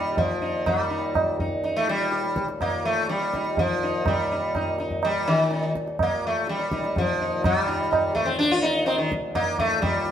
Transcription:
0.00 7.43 D#2 medium
0.00 7.43 A#2 medium
0.00 0.18 G3 medium
0.00 0.16 D#4 soft
0.17 0.66 F3 medium
0.17 tabla tin medium
0.17 tabla ge medium
0.42 0.65 D#4 soft
0.66 1.36 G3 medium
0.66 tabla na medium
0.66 tabla ge medium
0.90 1.13 D#4 soft
1.15 tabla na medium
1.15 tabla ge medium
1.40 1.63 D#4 soft
1.40 tabla ge medium
1.64 1.87 D#4 soft
1.64 tabla te medium
1.76 1.89 A3 medium
1.88 2.46 G3 medium
1.88 tabla te medium
2.12 tabla te medium
2.25 tabla te medium
2.36 tabla ke medium
2.48 tabla te medium
2.61 2.85 A#3 medium
2.61 tabla na medium
2.61 tabla ge medium
2.85 3.09 A3 medium
3.09 3.59 G3 medium
3.09 tabla te medium
3.22 tabla te medium
3.34 3.57 D#4 soft
3.34 tabla ke medium
3.45 tabla te medium
3.57 4.07 F3 medium
3.57 tabla tin medium
3.57 tabla ge medium
3.83 4.05 D#4 soft
4.06 4.76 G3 medium
4.06 tabla na medium
4.06 tabla ge medium
4.32 4.54 D#4 soft
4.55 4.78 D#4 soft
4.55 tabla na medium
4.55 tabla ge medium
4.79 5.02 D#4 soft
4.79 tabla te medium
4.90 tabla ge medium
5.03 5.29 G3 medium
5.03 tabla na medium
5.28 5.72 D#3 medium
5.51 5.75 D#4 soft
5.51 tabla te medium
5.63 tabla te medium
5.75 tabla ke medium
5.87 tabla te medium
5.99 6.26 A#3 medium
5.99 tabla na medium
5.99 tabla ge medium
6.27 6.49 A3 medium
6.47 6.98 G3 medium
6.47 tabla te medium
6.59 tabla te medium
6.72 6.95 D#4 soft
6.72 tabla ke medium
6.84 tabla te medium
6.96 7.45 F3 medium
6.96 tabla tin medium
6.96 tabla ge medium
7.21 7.43 D#4 soft
7.44 10.11 D#2 medium
7.44 10.11 A#2 medium
7.44 8.14 G3 medium
7.44 tabla na medium
7.44 tabla ge medium
7.67 7.90 D#4 soft
7.91 8.14 D#4 soft
7.91 tabla na medium
7.91 tabla ge medium
8.15 8.28 A3 medium
8.15 tabla ge medium
8.26 8.38 C4 medium
8.39 8.52 D4 medium
8.39 tabla te medium
8.51 8.64 F4 medium
8.62 8.86 D#4 medium
8.62 tabla te medium
8.86 8.98 C4 medium
8.86 tabla na medium
8.98 9.10 D#3 medium
9.12 tabla ke medium
9.35 9.59 A#3 medium
9.35 tabla na medium
9.35 tabla ge medium
9.59 9.81 A3 medium
9.59 tabla ge medium
9.82 10.11 G3 medium
9.82 tabla na medium
9.82 tabla ge medium
10.06 tabla te medium

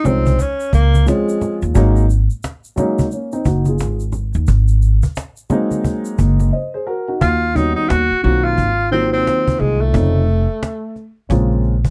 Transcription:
0.04 0.36 C2 medium
0.04 0.31 F3 medium
0.04 0.31 G#3 medium
0.04 0.31 C4 medium
0.04 0.42 C4 medium
0.04 0.32 C#4 medium
0.04 0.32 D#4 medium
0.04 cajon slap soft
0.04 high conga medium
0.04 low conga medium
0.04 shaker medium
0.26 cajon bass medium
0.26 high conga medium
0.26 shaker soft
0.39 0.74 C#4 medium
0.39 cajon bass medium
0.39 shaker medium
0.60 shaker medium
0.73 1.04 C#2 medium
0.73 1.09 A#3 medium
0.73 cajon bass medium
0.73 shaker soft
0.95 high conga medium
0.95 shaker medium
1.06 1.75 F3 medium
1.06 1.74 G#3 medium
1.06 1.63 G#3 medium
1.06 1.75 C4 medium
1.06 1.75 C#4 medium
1.06 1.76 F4 medium
1.06 cajon slap medium
1.06 shaker medium
1.29 shaker soft
1.41 cajon slap soft
1.41 low conga medium
1.41 shaker soft
1.62 1.74 D#2 medium
1.62 shaker soft
1.74 2.27 G#1 medium
1.74 2.01 F#3 medium
1.74 2.02 G#3 medium
1.74 2.02 A#3 medium
1.74 2.02 C#4 medium
1.74 2.03 D#4 loud
1.74 cajon bass loud
1.74 shaker medium
1.96 shaker soft
2.10 cajon slap soft
2.10 shaker medium
2.30 shaker soft
2.43 cajon slap loud
2.43 shaker medium
2.64 shaker soft
2.76 3.03 F#3 medium
2.76 3.04 G#3 medium
2.76 3.04 A#3 medium
2.76 3.04 C#4 medium
2.76 3.05 D#4 medium
2.76 cajon slap soft
2.76 high conga medium
2.76 low conga medium
2.76 shaker soft
2.98 cajon bass medium
2.98 high conga medium
2.98 shaker soft
3.11 3.32 A#3 soft
3.11 3.32 C#4 medium
3.11 cajon slap soft
3.11 shaker medium
3.32 3.46 C4 medium
3.32 3.45 D#4 medium
3.32 shaker soft
3.45 3.80 F#1 medium
3.45 3.66 D#4 medium
3.45 3.66 F#4 medium
3.45 cajon bass medium
3.45 shaker soft
3.65 4.00 F4 medium
3.65 4.00 G#4 medium
3.65 cajon slap soft
3.65 high conga medium
3.65 shaker medium
3.79 4.31 G#1 medium
3.79 cajon slap loud
3.79 shaker medium
4.00 shaker soft
4.12 cajon slap soft
4.12 low conga medium
4.12 shaker soft
4.34 4.47 D#2 medium
4.34 shaker soft
4.47 4.99 G#1 medium
4.47 cajon bass loud
4.47 shaker medium
4.68 shaker soft
4.82 cajon slap soft
4.82 shaker soft
5.02 cajon bass medium
5.02 shaker soft
5.16 cajon slap loud
5.16 shaker medium
5.37 shaker soft
5.50 6.47 F#3 medium
5.50 6.47 G#3 medium
5.50 6.48 A#3 medium
5.50 6.48 C4 medium
5.50 6.48 D#4 medium
5.50 cajon slap soft
5.50 high conga medium
5.50 low conga medium
5.50 shaker soft
5.71 high conga medium
5.71 shaker soft
5.84 cajon bass medium
5.84 shaker medium
6.05 shaker soft
6.18 6.50 F#1 medium
6.18 cajon bass medium
6.18 shaker soft
6.40 cajon slap soft
6.40 high conga medium
6.40 shaker soft
6.53 6.73 C5 medium
6.53 6.73 D#5 medium
6.74 6.87 G#4 medium
6.74 6.86 C5 medium
6.87 7.07 F#4 medium
6.87 7.07 A#4 medium
7.08 7.41 D#4 soft
7.08 7.40 F#4 medium
7.21 7.72 D#2 loud
7.21 7.57 F4 loud
7.21 cajon bass loud
7.55 7.97 D#3 medium
7.55 7.98 G3 medium
7.55 7.98 B3 medium
7.55 7.98 C#4 medium
7.55 7.75 D#4 medium
7.55 7.99 F#4 medium
7.55 cajon bass medium
7.75 7.90 D#4 medium
7.89 8.09 D#2 medium
7.89 8.23 F#4 loud
7.89 cajon slap loud
8.11 muted upright bass stroke soft
8.23 8.55 B1 medium
8.23 8.66 D#3 medium
8.23 8.66 F#3 medium
8.23 8.66 A#3 medium
8.23 8.67 C4 medium
8.23 8.67 F4 medium
8.23 8.45 F#4 medium
8.23 cajon slap soft
8.44 8.91 F4 loud
8.58 9.22 G#1 medium
8.58 cajon bass medium
8.79 cajon slap soft
8.91 9.88 D#3 medium
8.91 9.89 F#3 medium
8.91 9.89 A#3 medium
8.91 9.11 C4 loud
8.91 9.89 C4 medium
8.91 9.90 F4 medium
8.91 cajon slap soft
9.12 9.61 C4 loud
9.27 cajon slap medium
9.48 cajon bass medium
9.59 9.91 C2 medium
9.59 9.83 G#3 medium
9.59 cajon slap soft
9.81 11.17 A3 medium
9.93 10.45 F1 loud
9.93 10.19 C#3 medium
9.93 10.20 F3 medium
9.93 10.20 A3 medium
9.93 10.21 C4 medium
9.93 10.21 D#4 medium
9.93 cajon bass loud
10.28 cajon slap soft
10.63 cajon slap loud
10.96 cajon slap soft
11.29 11.90 A#1 loud
11.29 11.72 C#3 medium
11.29 11.73 G#3 medium
11.29 11.73 A#3 medium
11.29 11.73 C4 medium
11.29 11.74 F4 medium
11.29 cajon bass medium
11.51 cajon slap soft
11.64 cajon slap soft
11.85 cajon bass medium

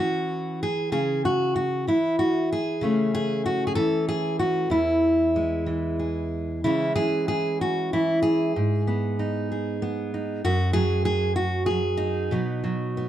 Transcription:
0.00 1.28 E3 medium
0.00 0.60 C#4 soft
0.00 0.61 F#4 medium
0.63 0.91 G#4 medium
0.92 1.86 C#3 medium
0.92 1.23 G#4 medium
1.25 1.54 F#4 medium
1.56 1.87 F#4 medium
1.87 3.49 E3 medium
1.87 2.19 E4 medium
2.19 2.50 F#4 medium
2.52 3.13 G#4 medium
2.81 3.75 C#3 medium
2.81 4.67 A3 soft
2.81 4.68 C#4 soft
3.15 3.45 G#4 loud
3.46 3.67 F#4 medium
3.67 3.75 G#4 medium
3.75 5.66 E3 medium
3.75 4.07 A4 loud
4.09 4.39 G#4 loud
4.39 4.71 F#4 medium
4.70 6.63 E2 medium
4.70 5.99 E4 medium
5.36 6.60 G#3 soft
5.66 6.59 E3 medium
5.99 6.60 G#4 soft
6.64 6.96 C#3 medium
6.64 6.95 E3 soft
6.64 8.87 G#3 soft
6.64 8.53 C#4 soft
6.64 6.95 E4 medium
6.96 7.92 E3 medium
6.96 7.27 G#4 loud
7.28 7.60 G#4 medium
7.61 7.92 F#4 medium
7.93 8.52 E3 medium
7.93 8.22 E4 medium
8.22 9.50 G#4 medium
8.56 10.41 G#2 medium
8.87 9.81 B3 medium
9.19 10.13 D#4 soft
9.52 10.41 G#4 soft
9.82 10.41 B3 medium
10.14 10.41 D#4 soft
10.44 12.30 F#2 medium
10.44 10.73 F#4 loud
10.73 11.69 F#3 medium
10.73 11.04 G#4 loud
11.05 11.35 G#4 loud
11.36 11.66 F#4 loud
11.66 12.31 G#4 loud
11.71 12.30 F#3 medium
11.97 13.09 D#4 medium
12.31 13.09 B2 medium
12.31 12.62 F#3 soft
12.31 12.96 B3 soft
12.64 13.09 F#3 medium
12.97 13.09 B3 soft

